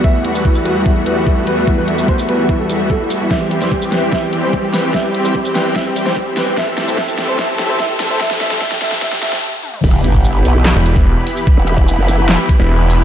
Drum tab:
CC |----------------|----------------|----------------|----------------|
HH |--x---x---x---x-|--x---x---x---x-|--x---x---x---o-|--x---x---x---o-|
SH |---x-x----------|---x-x----x---x-|---x-x----------|---x-x----x---x-|
CP |----------------|----------------|----------------|----------------|
SD |----------------|----------------|o--o--o-o-----o-|o-----o-o--o--o-|
T1 |----------------|----------------|----------------|----------------|
T2 |----------------|----------------|----------------|----------------|
BD |o---o---o---o---|o---o---o---o---|o---o---o---o---|o---o---o---o---|

CC |----------------|----------------|x---------------|----------------|
HH |--x---x---x---o-|--x--xx---x-----|--x---x---x---o-|--x---x---x---o-|
SH |---x-x----------|---x-x----x-----|----x-x--------x|----x-x---------|
CP |----------------|----------------|--------x-------|--------x-------|
SD |o-o-o-o-o-o-o-o-|oooooooooooo----|--------o-------|--------o-------|
T1 |----------------|--------------o-|----------------|----------------|
T2 |----------------|---------------o|----------------|----------------|
BD |o---o---o---o---|o---o---o-------|o--o-------o----|o--o------o-----|